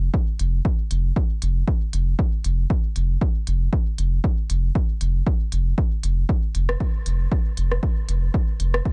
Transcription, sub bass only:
0.40 0.60 F1 loud
0.91 1.12 F1 loud
1.42 1.63 F1 loud
1.93 2.14 F1 loud
2.45 2.66 F1 medium
2.96 3.17 F1 loud
3.47 3.68 F1 loud
3.98 4.19 F1 loud
4.50 4.71 F1 loud
5.01 5.22 F1 medium
5.52 5.73 F1 medium
6.04 6.25 F1 medium
6.55 6.76 F1 loud
7.06 7.27 F1 medium
7.57 7.78 F1 medium
8.08 8.30 F1 loud
8.60 8.81 F1 medium

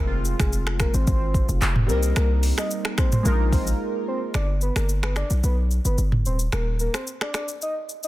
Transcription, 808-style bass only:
0.00 0.34 F1 loud
0.40 0.87 F1 medium
0.94 1.06 G#1 loud
1.07 1.44 G#1 medium
1.49 1.60 F1 loud
1.62 1.91 F1 loud
1.89 2.13 C2 loud
2.16 2.53 C2 loud
3.25 3.73 A#1 loud
4.35 4.71 G1 loud
4.76 5.24 G1 loud
5.30 5.42 B1 medium
5.44 5.80 B1 loud
5.85 5.96 G1 medium
5.98 6.27 G1 medium
6.25 6.49 D#1 loud
6.53 6.89 D#1 loud

